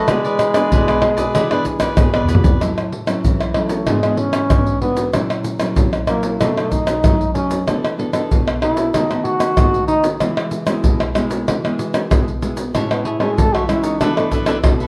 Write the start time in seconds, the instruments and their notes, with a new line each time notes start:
Already playing: trombone A3
0.08 nylon-string guitar E3 B3 D4 G#4, trombone G#3, cavaquinho E4 G#4 B4 D5, pandeiro, tamborim, shaker, surdo
0.24 cavaquinho G#4 B4 D5, pandeiro, shaker
0.39 pandeiro, tamborim, shaker
0.54 nylon-string guitar B3 D4 G#4, cavaquinho G#4 B4 D5, pandeiro, tamborim, shaker
0.71 nylon-string guitar B2, cavaquinho E4 G#4 B4 D5, pandeiro, shaker, surdo
0.88 cavaquinho G#4 B4 D5, pandeiro, tamborim, shaker
1.02 nylon-string guitar B3 D4 G#4, muted cavaquinho stroke, pandeiro, tamborim
1.17 cavaquinho G#4 B4 D5, pandeiro, shaker, surdo
1.34 nylon-string guitar E3, cavaquinho E4 G#4 B4 D5, pandeiro, tamborim, shaker, surdo
1.50 nylon-string guitar B3 D4 G#4, cavaquinho G#4 B4 D5, pandeiro, tamborim, shaker
1.65 muted cavaquinho stroke, pandeiro, shaker, surdo
1.80 cavaquinho G#4 B4 D5, pandeiro, tamborim, shaker, surdo
1.97 nylon-string guitar B2 B3 D4 G#4, pandeiro, tamborim, shaker, surdo
2.13 cavaquinho G#4 B4 D5, pandeiro, tamborim, shaker
2.23 surdo
2.28 cavaquinho E4 G#4 B4 D5, pandeiro, shaker, surdo
2.34 surdo
2.43 cavaquinho G#4 B4 D5, pandeiro, shaker, surdo
2.60 nylon-string guitar A2 F#3 C#4 E4, pandeiro, tamborim, shaker, surdo
2.77 pandeiro, tamborim, shaker
2.92 pandeiro
3.06 nylon-string guitar F#3 C#4 E4, pandeiro, tamborim, shaker
3.24 nylon-string guitar E3, pandeiro, shaker, surdo
3.40 pandeiro, tamborim, shaker
3.54 nylon-string guitar F#3 C#4 E4, trombone A3, pandeiro, tamborim
3.69 pandeiro, shaker
3.87 nylon-string guitar G#2 E3 B3 D4, trombone G#3, pandeiro, tamborim, shaker, surdo
4.03 nylon-string guitar E3 B3 D4, pandeiro, tamborim, shaker
4.17 trombone C#4, pandeiro
4.33 pandeiro, tamborim, shaker
4.50 nylon-string guitar G#2 E3 B3 D4, pandeiro, tamborim, shaker, surdo
4.67 pandeiro, shaker
4.82 nylon-string guitar E3 B3 D4, trombone B3, pandeiro
4.97 pandeiro, shaker
5.14 nylon-string guitar A#2 F#3 C#4 E4, pandeiro, tamborim, shaker, surdo
5.30 pandeiro, tamborim, shaker
5.45 pandeiro, shaker
5.60 nylon-string guitar F#3 C#4 E4, pandeiro, tamborim, shaker
5.77 nylon-string guitar A#2, pandeiro, shaker, surdo
5.93 pandeiro, tamborim, shaker
6.08 nylon-string guitar F#3 C#4 E4, trombone A#3, pandeiro, tamborim, shaker
6.23 pandeiro, shaker
6.41 nylon-string guitar B2 F#3 A3 D#4, trombone A3, pandeiro, tamborim, shaker, surdo
6.57 nylon-string guitar F#3 A3 D#4, pandeiro, tamborim, shaker
6.71 trombone D#4, pandeiro, shaker, surdo
6.87 pandeiro, tamborim, shaker
7.04 nylon-string guitar F#2 F#3 A3 D#4, pandeiro, tamborim, shaker, surdo
7.21 pandeiro, shaker
7.34 nylon-string guitar F#3 A3 D#4, trombone C#4, pandeiro, shaker
7.51 pandeiro, shaker
7.67 nylon-string guitar E3 B3 D4 A4, pandeiro, tamborim, shaker, surdo
7.85 pandeiro, tamborim, shaker
7.98 nylon-string guitar B3 D4 A4, pandeiro
8.13 nylon-string guitar B3 D4 A4, pandeiro, tamborim, shaker
8.31 nylon-string guitar B2, pandeiro, shaker, surdo
8.47 pandeiro, tamborim, shaker
8.62 nylon-string guitar B3 D4 A4, trombone E4, pandeiro, tamborim
8.77 pandeiro, shaker
8.94 nylon-string guitar D#3 A3 B3 F#4, trombone D#4, pandeiro, tamborim, shaker, surdo
9.10 nylon-string guitar A3 B3 F#4, pandeiro, tamborim, shaker
9.24 trombone F#4, pandeiro
9.40 pandeiro, tamborim, shaker
9.57 nylon-string guitar D#3 A3 B3 F#4, pandeiro, tamborim, shaker, surdo
9.74 pandeiro, shaker
9.88 trombone D#4, pandeiro, shaker
10.04 pandeiro, shaker
10.21 nylon-string guitar E3 G#3 B3 E4, pandeiro, tamborim, shaker, surdo
10.37 pandeiro, tamborim, shaker
10.51 pandeiro, shaker
10.67 nylon-string guitar G#3 B3 E4, pandeiro, tamborim, shaker
10.84 nylon-string guitar B2, pandeiro, shaker, surdo
11.01 pandeiro, tamborim, shaker
11.15 nylon-string guitar G#3 B3 E4, pandeiro, tamborim, shaker
11.31 pandeiro, shaker
11.48 nylon-string guitar E3, pandeiro, tamborim, shaker, surdo
11.64 nylon-string guitar G#3 B3 E4, pandeiro, tamborim, shaker
11.79 pandeiro, shaker
11.94 pandeiro, tamborim, shaker
12.10 nylon-string guitar B2 G#3 B3 E4, pandeiro, tamborim, shaker, surdo
12.28 pandeiro, shaker
12.42 nylon-string guitar G#3 B3 E4, pandeiro, shaker
12.57 pandeiro, shaker
12.74 nylon-string guitar A2 G#3 C#4 E4, cavaquinho C#5 E5 A5, pandeiro, tamborim, shaker, surdo
12.91 trombone B3, pandeiro, tamborim, shaker
13.05 trombone E4, cavaquinho G#4 C#5 E5 A5, pandeiro
13.20 nylon-string guitar G#3 C#4 E4, cavaquinho G#4 C#5 E5 A5, trombone G#4, pandeiro, tamborim, shaker
13.37 nylon-string guitar E3, trombone A4, pandeiro, shaker, surdo
13.53 trombone F#4, cavaquinho C#5 E5 A5, pandeiro, tamborim, shaker
13.68 nylon-string guitar G#3 C#4 E4, trombone E4, pandeiro, tamborim, shaker
13.83 trombone D#4, cavaquinho C#5 E5 A5, pandeiro, shaker
14.00 nylon-string guitar E3 B3 D4 A4, trombone D4, cavaquinho D4 A4 B4 E5, pandeiro, tamborim, shaker, surdo
14.16 trombone A3, nylon-string guitar B3 D4 A4, pandeiro, tamborim, shaker
14.31 cavaquinho D4 A4 B4 E5, pandeiro, shaker, surdo
14.46 cavaquinho D4 A4 B4 E5, pandeiro, tamborim, shaker
14.63 nylon-string guitar B2 B3 D4 A4, pandeiro, tamborim, shaker, surdo
14.80 cavaquinho A4 B4 E5, pandeiro, shaker